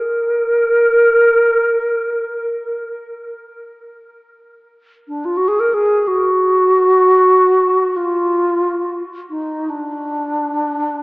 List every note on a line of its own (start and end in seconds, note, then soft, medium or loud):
0.00 2.95 A#4 medium
5.08 5.27 D4 medium
5.25 5.38 F4 medium
5.37 5.50 F#4 medium
5.48 5.61 G#4 medium
5.60 5.75 A#4 medium
5.74 6.09 G#4 medium
6.08 7.98 F#4 medium
7.96 9.03 F4 medium
9.30 9.71 D#4 medium
9.70 11.03 D4 medium